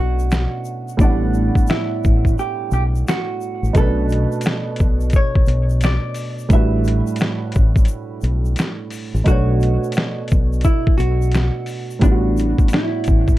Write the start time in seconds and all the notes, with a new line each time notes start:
Already playing: B1 B2 A3 C#4 D4 F#4
0.19 shaker
0.31 finger snap, snare, shaker
0.65 shaker
0.88 shaker
0.97 A1 A2 G3 B3, kick, shaker
1.01 D4 F#5
1.34 shaker
1.55 kick, shaker
1.67 E4, finger snap, snare, shaker
2.04 A1, kick, shaker
2.25 kick, shaker
2.39 G4, shaker
2.71 B1 G4, shaker
2.96 shaker
3.08 F#4, finger snap, snare, shaker
3.41 shaker
3.63 A1, shaker
3.73 B1 B2 A3, kick, closed hi-hat, shaker
3.78 C#4 A4 B4
3.84 D4
4.09 closed hi-hat, shaker
4.32 shaker
4.41 closed hi-hat, shaker
4.46 finger snap, snare
4.76 closed hi-hat, shaker
4.80 B1, kick
5.01 shaker
5.10 kick, closed hi-hat, shaker
5.16 C#5
5.35 kick
5.46 B1, closed hi-hat, shaker
5.70 shaker
5.81 D5, finger snap, snare, closed hi-hat, shaker
6.14 open hi-hat, shaker
6.39 shaker
6.49 A1 A2 G3 D4, kick, closed hi-hat, shaker
6.53 F#4 B4 E5
6.84 closed hi-hat, shaker
7.07 shaker
7.16 closed hi-hat, shaker
7.21 finger snap, snare
7.52 kick, closed hi-hat, shaker
7.56 A1
7.76 kick, shaker
7.85 closed hi-hat, shaker
8.21 B1, closed hi-hat, shaker
8.45 shaker
8.56 finger snap, snare, closed hi-hat, shaker
8.90 open hi-hat, shaker
9.14 A1, shaker
9.24 B1 B2 A3 F#4, kick, closed hi-hat, shaker
9.28 D4 C#5
9.61 closed hi-hat, shaker
9.84 shaker
9.92 closed hi-hat, shaker
9.97 finger snap, snare
10.28 closed hi-hat, shaker
10.32 B1, kick
10.53 shaker
10.61 E4, kick, closed hi-hat, shaker
10.87 kick
10.98 B1 F#4, closed hi-hat, shaker
11.22 shaker
11.32 finger snap, snare, closed hi-hat, shaker
11.66 open hi-hat, shaker
11.91 shaker
11.99 A1 A2 G3 B3, kick, closed hi-hat
12.03 D4 F4, shaker
12.12 F#4
12.37 closed hi-hat, shaker
12.58 kick, shaker
12.68 closed hi-hat, shaker
12.73 E4, finger snap, snare
13.04 A1, kick, closed hi-hat, shaker
13.28 kick, shaker